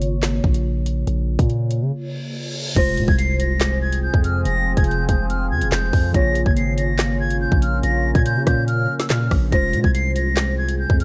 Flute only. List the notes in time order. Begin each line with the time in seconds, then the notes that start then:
2.76 A#6
3.08 G#6
3.19 C7
3.40 A#6
3.82 G#6
4.03 G6
4.24 F6
4.45 A#6
4.77 G#6
4.88 G6
5.09 G6
5.30 F6
5.51 G#6
5.72 G6
6.14 A#6
6.46 G#6
6.57 C7
6.78 A#6
7.20 G#6
7.41 G6
7.62 F6
7.83 A#6
8.15 G#6
8.26 G6
8.47 G6
8.68 F6
9.00 E6
9.10 F6
9.52 A#6
9.84 G#6
9.95 C7
10.16 A#6
10.58 G#6
10.79 G6
11.00 F6